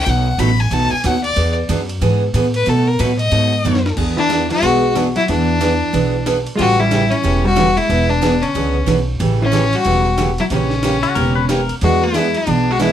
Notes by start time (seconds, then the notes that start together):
Already playing: G5
0.06 B1 B2 F#3 A3 D#4 F#4 F#5, ride
0.38 A1 B2 F#3 A3 D#4 F#4 B5, hi-hat pedal, ride
0.60 G#5
0.71 B1 B2 F#3 A3 D#4 F#4 A5, ride
0.91 G#5, muted upright bass stroke
1.04 D#2 B2 F#3 A3 D#4 F#4 F#5, hi-hat pedal, ride
1.23 D5, ride
1.36 E2 E3 B3 D4 G#4, ride
1.69 F#2 E3 B3 D4 G#4, hi-hat pedal, ride
1.89 ride
2.01 G#2 E3 B3 D4 G#4, ride
2.34 A2 E3 B3 D4 G#4, hi-hat pedal, ride
2.54 B4, ride
2.66 B2 F#3 A3 D#4 F#4 A4, ride
2.87 A#4
2.99 A2 B2 F#3 A3 D#4 F#4 B4, hi-hat pedal, ride
3.19 D#5, ride
3.31 G#2 B2 F#3 A3 D#4 F#4, ride
3.64 F#2 B2 F#3 A3 D#4 F#4, hi-hat pedal
3.75 snare
3.86 snare
3.97 E2 E3 B3 D4 G#4, kick, crash
4.17 E3 D4
4.29 E3 B3 D4 G#4, snare, hi-hat pedal, ride
4.50 G#3 F#4, ride
4.62 B1 E3 B3 D4 G#4, ride
4.95 E3 B3 D4 G#4, snare, hi-hat pedal, ride
5.16 F#3 E4, ride
5.28 E2 E3 B3 D4 G#4, ride
5.61 E3 B3 D4 G#4, snare, hi-hat pedal, ride
5.93 B1 E3 B3 D4 G#4, ride
6.26 E3 B3 D4 G#4, snare, hi-hat pedal, ride
6.47 ride
6.56 A1 C#3 E3 G#3 A3 C#4 F4 G4, ride
6.60 G3 F#4
6.80 G3 E4
6.91 C#3 E3 A3 C#4 G4, snare, hi-hat pedal, ride
7.11 E3 C#4, ride
7.23 E1 C#3 E3 A3 C#4 G4, ride
7.45 G3 F#4
7.56 C#3 E3 A3 C#4 G4, snare, hi-hat pedal, ride
7.77 G#3 E4, ride
7.89 E1 E3 B3 D4 G#4, ride
8.10 E3 D4
8.21 E3 B3 D4 G#4, snare, hi-hat pedal, ride
8.41 D3 C#4, ride
8.55 C#2 E3 B3 D4 G#4, ride
8.86 B1 E3 B3 D4 G#4, snare, hi-hat pedal, ride
9.20 A1 C#3 E3 A3 C#4 G4, ride
9.42 E3 C#4
9.52 C#3 E3 A3 C#4 G4, snare, hi-hat pedal, ride
9.73 G3 F#4, ride
9.85 E1 C#3 E3 A3 C#4 G4, ride
10.17 C#3 E3 A3 C#4 G4, snare, hi-hat pedal, ride
10.38 F#3 E4, ride
10.50 A#1 C#3 E3 A#3 C#4 G4 A#4, ride
10.70 snare
10.83 E3 A#3 C#4 G4 A#4, snare, hi-hat pedal, ride
11.03 F#4, ride
11.15 E1 E3 A#3 C#4 G4 A#4, ride
11.35 B4
11.49 E3 A#3 C#4 G4 A#4, snare, hi-hat pedal, ride
11.69 ride
11.81 E2 E3 G#3 B3 D4 F#4 G#4, ride
12.04 G#3 E4
12.14 E3 B3 D4 G#4, snare, hi-hat pedal, ride
12.35 E3 D4, ride
12.46 B1 E3 B3 D4 G#4, ride
12.71 G#3 F#4
12.79 E3 G#3 B3 D4 E4 G#4, snare, hi-hat pedal, ride